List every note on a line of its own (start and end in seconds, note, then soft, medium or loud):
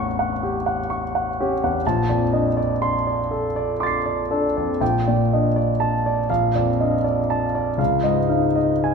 0.00 1.80 A1 soft
0.00 1.63 E2 soft
0.00 1.41 C#4 soft
0.00 0.19 F#5 soft
0.00 1.86 G5 soft
0.00 0.31 C#6 medium
0.19 0.56 F#5 soft
0.43 0.80 G4 soft
0.66 1.03 F#5 soft
0.90 1.27 C#6 soft
1.15 1.52 F#5 soft
1.41 1.77 C#4 soft
1.41 1.77 G4 soft
1.63 1.86 E2 soft
1.63 1.86 F#5 soft
1.87 4.78 A#1 soft
1.87 2.23 A5 soft
2.09 2.47 F2 soft
2.09 2.47 D5 soft
2.33 2.71 D4 soft
2.33 2.57 D#5 soft
2.57 2.95 D5 soft
2.82 3.20 C6 medium
3.07 3.46 D5 soft
3.31 3.70 A4 soft
3.56 3.96 D5 soft
3.80 4.21 C6 soft
3.80 4.77 D6 soft
3.80 4.79 A6 soft
3.87 4.80 C7 soft
4.06 4.46 D5 soft
4.31 4.71 D4 soft
4.31 4.71 A4 soft
4.57 4.82 F2 soft
4.57 4.81 D5 soft
4.81 6.25 A#1 soft
4.81 5.21 G5 soft
5.08 5.46 A#2 soft
5.08 5.46 D5 soft
5.33 5.71 D4 soft
5.33 5.56 D#5 soft
5.56 5.95 D5 soft
5.80 6.19 A5 medium
6.06 6.30 D5 soft
6.30 7.76 A#1 soft
6.30 6.70 F5 soft
6.55 6.95 F2 soft
6.55 6.95 D5 soft
6.81 7.20 D4 soft
6.81 7.05 D#5 soft
7.04 7.44 D5 soft
7.30 7.70 A5 soft
7.55 7.80 D5 soft
7.78 8.94 C#2 soft
7.78 8.19 F5 soft
8.03 8.45 G#2 soft
8.03 8.45 D#5 soft
8.29 8.71 D#4 soft
8.29 8.56 F5 soft
8.55 8.94 D#5 soft
8.84 8.94 G#5 soft